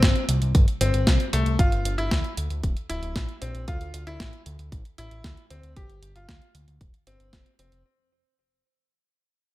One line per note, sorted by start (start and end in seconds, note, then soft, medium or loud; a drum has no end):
0.00 0.14 G1 loud
0.00 0.22 C4 medium
0.00 kick loud
0.00 snare loud
0.00 closed hi-hat medium
0.16 closed hi-hat soft
0.29 0.40 C2 medium
0.29 closed hi-hat medium
0.42 0.53 C2 medium
0.42 closed hi-hat soft
0.55 0.66 G1 loud
0.55 kick loud
0.55 closed hi-hat medium
0.68 closed hi-hat soft
0.81 0.93 G1 medium
0.81 1.25 C4 medium
0.81 closed hi-hat medium
0.94 1.06 G1 medium
0.94 closed hi-hat soft
1.07 1.19 C2 loud
1.07 kick loud
1.07 snare loud
1.07 closed hi-hat medium
1.20 closed hi-hat soft
1.33 1.45 C2 medium
1.33 1.55 A3 medium
1.33 closed hi-hat medium
1.46 1.58 C2 medium
1.46 closed hi-hat soft
1.59 1.71 G1 loud
1.59 1.92 F4 medium
1.59 kick loud
1.59 closed hi-hat medium
1.72 1.84 G1 medium
1.72 closed hi-hat soft
1.85 1.97 G1 medium
1.85 closed hi-hat medium
1.98 2.10 G1 medium
1.98 2.31 E4 medium
1.98 closed hi-hat soft
2.11 2.23 D2 medium
2.11 kick loud
2.11 snare loud
2.11 closed hi-hat medium
2.24 closed hi-hat soft
2.37 2.49 D2 medium
2.37 closed hi-hat medium
2.50 2.62 D2 medium
2.50 closed hi-hat soft
2.63 2.75 D1 loud
2.63 kick loud
2.63 closed hi-hat medium
2.77 closed hi-hat soft
2.89 3.01 D1 medium
2.89 3.33 E4 medium
2.89 closed hi-hat medium
3.03 3.14 D1 medium
3.03 closed hi-hat soft
3.16 3.27 A#1 loud
3.16 kick loud
3.16 snare loud
3.16 closed hi-hat medium
3.29 closed hi-hat soft
3.42 3.53 A#1 medium
3.42 3.64 C4 medium
3.42 closed hi-hat medium
3.55 3.66 A#1 medium
3.55 closed hi-hat soft
3.68 3.79 D2 loud
3.68 4.01 F4 medium
3.68 kick loud
3.68 closed hi-hat medium
3.81 3.93 D2 medium
3.81 closed hi-hat soft
3.94 4.06 D2 medium
3.94 closed hi-hat medium
4.07 4.19 D2 medium
4.07 4.40 E4 medium
4.07 closed hi-hat soft
4.20 4.32 A1 loud
4.20 kick loud
4.20 snare loud
4.20 closed hi-hat medium
4.33 closed hi-hat soft
4.46 4.58 D2 medium
4.46 closed hi-hat medium
4.59 4.71 D2 medium
4.59 closed hi-hat soft
4.72 4.84 A1 medium
4.72 kick loud
4.72 closed hi-hat medium
4.85 closed hi-hat soft
4.98 5.10 A1 medium
4.98 5.42 E4 medium
4.98 closed hi-hat medium
5.11 5.23 A1 medium
5.11 closed hi-hat soft
5.24 5.36 D2 loud
5.24 kick medium
5.24 snare loud
5.24 closed hi-hat medium
5.37 closed hi-hat soft
5.50 5.62 D2 medium
5.50 5.72 C4 medium
5.50 closed hi-hat medium
5.63 5.75 D2 medium
5.63 closed hi-hat soft
5.76 5.88 G1 medium
5.76 6.09 G4 medium
5.76 kick loud
5.76 closed hi-hat medium
5.90 6.01 G1 medium
5.90 closed hi-hat soft
6.03 6.14 G1 medium
6.03 closed hi-hat medium
6.16 6.27 G1 medium
6.16 6.49 F4 medium
6.16 closed hi-hat soft
6.29 6.40 D2 medium
6.29 kick loud
6.29 snare loud
6.29 closed hi-hat medium
6.42 closed hi-hat soft
6.55 6.66 D2 medium
6.55 closed hi-hat medium
6.68 6.79 D2 medium
6.68 closed hi-hat soft
6.81 6.92 D1 medium
6.81 kick loud
6.81 closed hi-hat medium
6.94 closed hi-hat soft
7.07 7.19 G1 medium
7.07 7.51 C4 medium
7.07 closed hi-hat medium
7.20 7.32 G1 medium
7.20 closed hi-hat soft
7.33 7.45 F1 loud
7.33 kick loud
7.33 snare loud
7.33 closed hi-hat medium
7.46 closed hi-hat soft
7.59 7.71 F1 medium
7.59 7.81 C4 medium
7.59 closed hi-hat medium
7.72 7.84 F1 medium
7.72 closed hi-hat soft